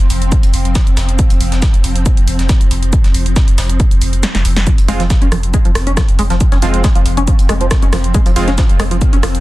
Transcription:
Already playing: synth drone F3 C4
0.10 sub bass F1, open hi-hat, shaker
0.22 sub bass F1, closed hi-hat
0.32 kick, closed hi-hat, shaker
0.43 sub bass F1, closed hi-hat
0.54 sub bass F1, open hi-hat, shaker
0.65 sub bass F1, closed hi-hat
0.75 kick, snare, closed hi-hat, shaker
0.87 sub bass F1, closed hi-hat
0.97 sub bass F1, snare, open hi-hat, shaker
1.09 sub bass F1, closed hi-hat
1.19 kick, closed hi-hat, shaker
1.30 sub bass F1, closed hi-hat
1.41 sub bass F1, open hi-hat, shaker
1.52 sub bass F1, snare, closed hi-hat
1.62 kick, snare, closed hi-hat, shaker
1.74 sub bass F1, closed hi-hat
1.84 sub bass F1, open hi-hat, shaker
1.95 sub bass F1, closed hi-hat
2.06 kick, closed hi-hat, shaker
2.17 sub bass F1, closed hi-hat
2.27 sub bass F1, open hi-hat, shaker
2.39 sub bass F1, snare, closed hi-hat
2.49 kick, snare, closed hi-hat, shaker
2.61 sub bass F1, closed hi-hat
2.71 sub bass F1, open hi-hat, shaker
2.83 sub bass F1, closed hi-hat
2.93 kick, closed hi-hat, shaker
3.04 sub bass F1, snare, closed hi-hat
3.14 sub bass F1, open hi-hat, shaker
3.26 sub bass F1, closed hi-hat
3.36 kick, snare, closed hi-hat, shaker
3.48 sub bass F1, closed hi-hat
3.58 sub bass F1, snare, open hi-hat, shaker
3.69 sub bass F1, closed hi-hat
3.80 kick, closed hi-hat, shaker
3.91 sub bass F1, closed hi-hat
4.01 sub bass F1, open hi-hat, shaker
4.13 sub bass F1, closed hi-hat
4.23 snare, closed hi-hat, shaker
4.35 sub bass F1, snare, closed hi-hat
4.45 sub bass F1, open hi-hat, shaker
4.56 sub bass F1, snare, closed hi-hat
4.67 synth arpeggio sound F3, synth drone F3 C4, kick, closed hi-hat, shaker
4.78 sub bass F1, closed hi-hat
4.88 sub bass F1, synth arpeggio sound G#3, supersaw synth G#3 C4 F4, open hi-hat, shaker
5.00 sub bass F1, synth arpeggio sound F3, snare, closed hi-hat
5.10 kick, snare, closed hi-hat, shaker
5.22 sub bass F1, synth arpeggio sound C#4, closed hi-hat
5.32 sub bass F1, synth arpeggio sound F3, cross-stick, open hi-hat, shaker
5.43 sub bass F1, closed hi-hat
5.54 synth arpeggio sound G#3, kick, closed hi-hat, shaker
5.65 sub bass F1, synth arpeggio sound F3, closed hi-hat
5.75 sub bass F1, cross-stick, snare, open hi-hat, shaker
5.87 sub bass F1, synth arpeggio sound C#4, closed hi-hat
5.97 synth arpeggio sound F3, kick, cross-stick, snare, closed hi-hat, shaker
6.09 sub bass F1, closed hi-hat
6.19 sub bass F1, synth arpeggio sound G#3, open hi-hat, shaker
6.30 sub bass F1, synth arpeggio sound F3, snare, closed hi-hat
6.40 kick, closed hi-hat, shaker
6.52 sub bass F1, synth arpeggio sound C#4, snare, closed hi-hat
6.62 sub bass F1, synth arpeggio sound F3, supersaw synth G#3 C4 F4, open hi-hat, shaker
6.74 sub bass F1, closed hi-hat
6.84 synth arpeggio sound G#3, kick, snare, closed hi-hat, shaker
6.95 sub bass F1, synth arpeggio sound F3, closed hi-hat
7.06 sub bass F1, open hi-hat, shaker
7.17 sub bass F1, synth arpeggio sound C#4, closed hi-hat
7.27 synth arpeggio sound F3, kick, closed hi-hat, shaker
7.39 sub bass F1, closed hi-hat
7.49 sub bass F1, synth arpeggio sound G#3, cross-stick, open hi-hat, shaker
7.61 sub bass F1, synth arpeggio sound F3, closed hi-hat
7.71 kick, cross-stick, snare, closed hi-hat, shaker
7.82 sub bass F1, synth arpeggio sound C#4, closed hi-hat
7.93 sub bass F1, synth arpeggio sound F3, cross-stick, snare, open hi-hat, shaker
8.04 sub bass F1, closed hi-hat
8.14 synth arpeggio sound G#3, kick, closed hi-hat, shaker
8.26 sub bass F1, synth arpeggio sound F3, closed hi-hat
8.36 sub bass F1, supersaw synth G#3 C4 F4, open hi-hat, shaker
8.48 sub bass F1, synth arpeggio sound C#4, snare, closed hi-hat
8.58 synth arpeggio sound F3, kick, snare, closed hi-hat, shaker
8.69 sub bass F1, closed hi-hat
8.80 sub bass F1, synth arpeggio sound G#3, cross-stick, open hi-hat, shaker
8.91 sub bass F1, synth arpeggio sound F3, closed hi-hat
9.01 kick, closed hi-hat, shaker
9.13 sub bass F1, synth arpeggio sound C#4, closed hi-hat
9.23 sub bass F1, synth arpeggio sound F3, cross-stick, snare, open hi-hat, shaker
9.35 sub bass F1, closed hi-hat

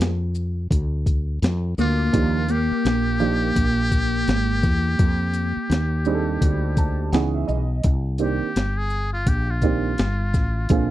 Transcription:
0.00 fretless electric bass F2, snare, closed hi-hat
0.35 shaker
0.71 fretless electric bass D2, kick, closed hi-hat
1.06 kick, closed hi-hat, shaker
1.42 fretless electric bass F2, snare, closed hi-hat
1.78 fretless electric bass D2, clean electric guitar A#3, muted trumpet F4, shaker
2.13 fretless electric bass D#2, upright piano F3 A#3 D4 D#4 G4, kick, closed hi-hat
2.48 clean electric guitar A#3, muted trumpet G4, closed hi-hat, shaker
2.71 muted fretless electric bass stroke
2.85 fretless electric bass A#1, snare, closed hi-hat
3.20 upright piano F3 A#3 D4 D#4 G4, shaker
3.56 fretless electric bass A#1, kick, closed hi-hat
3.91 kick, closed hi-hat, shaker
4.28 fretless electric bass G#1, snare, closed hi-hat
4.63 fretless electric bass E2, kick, snare, shaker
4.99 fretless electric bass F2, kick, closed hi-hat
5.34 closed hi-hat, shaker
5.57 muted fretless electric bass stroke
5.70 fretless electric bass D#2, snare, closed hi-hat
6.05 upright piano G3 C4 D4 D#4 G#4, shaker
6.14 upright piano A4
6.41 fretless electric bass D2, kick, closed hi-hat
6.77 upright piano A5, kick, closed hi-hat, shaker
7.12 fretless electric bass C#2, upright piano E3 B3 C#4 D#4 G#4 F#5, snare, closed hi-hat
7.34 upright piano E5
7.48 fretless electric bass B1, upright piano D#5, shaker
7.83 fretless electric bass C2, kick, closed hi-hat
8.18 upright piano D#3 A#3 C4 D4 G4, muted trumpet G4, closed hi-hat, shaker
8.43 muted fretless electric bass stroke
8.56 fretless electric bass G1, snare, closed hi-hat
8.77 muted trumpet G#4
8.90 shaker
9.13 muted trumpet F4
9.26 fretless electric bass A#1, muted trumpet G4, kick, closed hi-hat
9.50 muted trumpet F4
9.62 upright piano D#3 A#3 C4 D4 G4, kick, closed hi-hat, shaker
9.98 fretless electric bass G1, snare, closed hi-hat
10.34 fretless electric bass A1, kick, snare, shaker
10.69 fretless electric bass A#1, upright piano D3 G#3 A#3 C4 F4, kick, closed hi-hat

